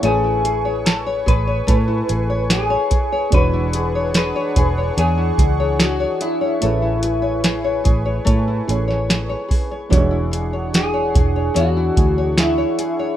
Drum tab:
HH |x-x-x-x-x-x-x-x-|x-x-x-x-x-x-x-x-|x-x-x-x-x-x-x-o-|x-x-x-x-x-x-x-x-|
SD |----o-------o---|----o-------o---|----o------oo---|----o-------o---|
BD |------o-o-----o-|o-----o---o-----|------o-o-----o-|o-----o---o-----|